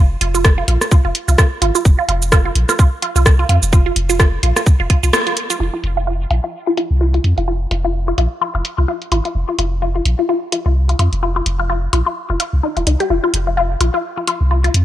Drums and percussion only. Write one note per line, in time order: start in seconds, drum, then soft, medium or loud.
0.21 closed hi-hat medium
0.35 shaker medium
0.45 kick loud
0.45 cross-stick medium
0.45 shaker soft
0.68 closed hi-hat medium
0.81 cross-stick medium
0.81 shaker soft
0.91 kick loud
0.91 shaker soft
1.15 closed hi-hat medium
1.28 shaker medium
1.38 kick loud
1.38 cross-stick medium
1.38 shaker soft
1.62 closed hi-hat medium
1.75 shaker medium
1.85 kick loud
1.85 shaker soft
2.09 closed hi-hat medium
2.22 shaker medium
2.32 kick loud
2.32 cross-stick medium
2.32 shaker soft
2.55 closed hi-hat medium
2.69 cross-stick medium
2.69 shaker medium
2.79 kick loud
2.79 shaker soft
3.02 closed hi-hat medium
3.16 shaker medium
3.26 kick loud
3.26 cross-stick medium
3.26 shaker soft
3.49 closed hi-hat medium
3.63 shaker medium
3.73 kick loud
3.73 shaker soft
3.96 closed hi-hat medium
4.10 shaker medium
4.20 kick loud
4.20 cross-stick medium
4.20 shaker soft
4.43 closed hi-hat medium
4.56 cross-stick medium
4.56 shaker medium
4.66 kick loud
4.66 shaker soft
4.90 kick medium
4.90 closed hi-hat medium
5.03 shaker medium
5.13 cross-stick loud
5.13 shaker soft
5.27 closed hi-hat soft
5.37 closed hi-hat medium
5.50 closed hi-hat soft
5.50 shaker medium
5.84 closed hi-hat medium
6.31 closed hi-hat medium
6.77 closed hi-hat medium
7.14 closed hi-hat soft
7.24 closed hi-hat medium
7.38 closed hi-hat soft
7.71 closed hi-hat medium
8.18 closed hi-hat medium
8.65 closed hi-hat medium
9.02 closed hi-hat soft
9.12 closed hi-hat medium
9.25 closed hi-hat soft
9.59 closed hi-hat medium
10.05 closed hi-hat loud
10.52 closed hi-hat medium
10.89 closed hi-hat soft
10.99 closed hi-hat medium
11.13 closed hi-hat soft
11.46 closed hi-hat medium
11.93 closed hi-hat medium
12.40 closed hi-hat medium
12.77 closed hi-hat soft
12.87 closed hi-hat medium
13.00 closed hi-hat soft
13.34 closed hi-hat medium
13.81 closed hi-hat medium
14.27 closed hi-hat medium
14.64 closed hi-hat soft
14.74 closed hi-hat medium